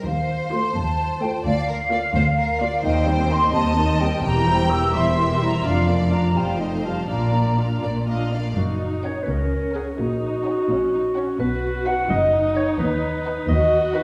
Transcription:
0.05 cello section D#2, double bass section D#2, violin section C5, flute section F5
0.51 viola section A3 F4, violin section C5, flute section C6
0.73 cello section D#2, double bass section D#2, flute section A5
1.20 viola section A3 F4, violin section C5, flute section G5
1.43 double bass section D2, cello section D2, violin section D5, flute section F5
1.68 violin section A#4
1.91 viola section A#3 F4, violin section D5
2.14 cello section D2, double bass section D2, violin section C5
2.38 violin section A#4
2.60 viola section A#3 F4, violin section D5
2.83 cello section D#2, double bass section D#2, viola section D#3 D#4, violin section C5 D#5, flute section G5
3.07 viola section G3 C4, violin section C5
3.30 viola section D#3 D#4, violin section D#5, flute section C6
3.52 cello section D#2, double bass section D#2, viola section G3 C4, violin section C5 D#5, flute section A5
3.76 viola section D#3 D#4, violin section D#5
4.00 viola section G3 C4, violin section C5, flute section G5
4.22 double bass section E1, cello section E2, viola section E3 G4, violin section A#4 G5, flute section A#5
4.47 viola section G3 E4, violin section C5
4.69 viola section E3 G4, violin section A#4, flute section E6
4.93 double bass section E1, cello section E2, viola section G3 E4, violin section C5 E5, flute section C6
5.17 viola section E3 G4, violin section A#4
5.41 viola section G3 E4, violin section C5, flute section A#5
5.64 double bass section F1, cello section F2, viola section D4 F4, violin section D5 F5, flute section F5
5.88 viola section A#3 D4, violin section D5
6.11 viola section D4 F4, violin section F5, flute section A#5
6.36 double bass section F1, cello section F2, viola section G3 F4, violin section C5 F5, flute section G5
6.60 viola section A3 D#4, violin section D#5
6.84 viola section G3 F4, violin section F5, flute section A5
7.09 double bass section A#1, cello section A#2, viola section D4 F4, violin section D5 F5, flute section A#5
7.34 viola section A#3 D4, violin section D5
7.58 viola section D4 F4, violin section F5
7.83 double bass section A#1, cello section A#2, viola section A#3 D4, violin section D5
8.08 viola section D4 F4, violin section D#5 F5
8.32 viola section A#3 D4, violin section D5 F5
8.56 double bass section F#1, cello section F#2, viola section D#4, clarinet F#4, marimba F#4
9.03 violin section C#4 A#4 F#5, marimba C#5, clarinet C#5
9.23 marimba A#4, clarinet B4
9.28 cello section C#2, double bass section C#2, viola section C#4, clarinet A#4
9.74 violin section C#4 A#4 F#5, clarinet G#4, marimba G#4
9.98 double bass section A#1, cello section A#2, viola section D#4, marimba F#4, clarinet F#4
10.45 violin section C#4 C#5 F#5
10.69 double bass section A#1, cello section A#2, viola section C#4
10.93 viola section D#4
11.16 violin section C#4 C#5 F#5, viola section C#4
11.39 double bass section B1, cello section B2, viola section F#4, clarinet B4, marimba B4
11.86 violin section D#4 B4 F#5, marimba F#5, clarinet F#5
12.09 double bass section F#1, cello section F#2, viola section D#4, marimba D#5, clarinet D#5
12.56 violin section D#4 B4 F#5, marimba C#5, clarinet C#5
12.77 cello section D#2, double bass section D#2, marimba B4, clarinet B4
13.26 violin section D#4 B4 F#5
13.48 double bass section D#2, cello section D#2, viola section F#4, marimba D#5, clarinet D#5
13.94 violin section D#4 B4 F#5, clarinet B4, marimba B4

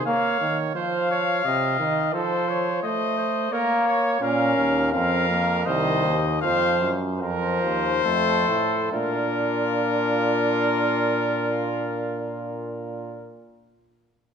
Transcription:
0.06 trombone A#3, trumpet C#5, cornet F5
0.41 trombone D#3
0.75 trombone F3, trumpet C5, cornet F5
1.11 trumpet C#5
1.45 trombone C3, trumpet D#5
1.79 trombone D#3
2.14 trombone F3, trumpet A4, cornet C5
2.49 trumpet C#5
2.83 trombone A3, trumpet C5, cornet D#5
3.18 trumpet C5
3.52 trombone A#3, trumpet A#4, cornet C#5
3.88 trumpet C#5
4.22 euphonium A#2, trombone C#4, trumpet A#4, cornet F5
4.57 euphonium D#2
4.93 euphonium F2, trombone C4, trumpet A#4, cornet F5
5.30 trombone A#3
5.65 euphonium C2, trombone D#3, trumpet C5, cornet D#5
6.04 euphonium D#2
6.41 euphonium F2, trombone F3, trumpet C5, cornet F5
6.81 euphonium F#2
7.20 euphonium F2, trombone F3, trumpet A#4, cornet C5
7.63 euphonium D#2
8.05 euphonium F2, trombone A3, trumpet A4
8.48 euphonium A2
8.92 euphonium A#2, trombone D4, trumpet F4, cornet A#4

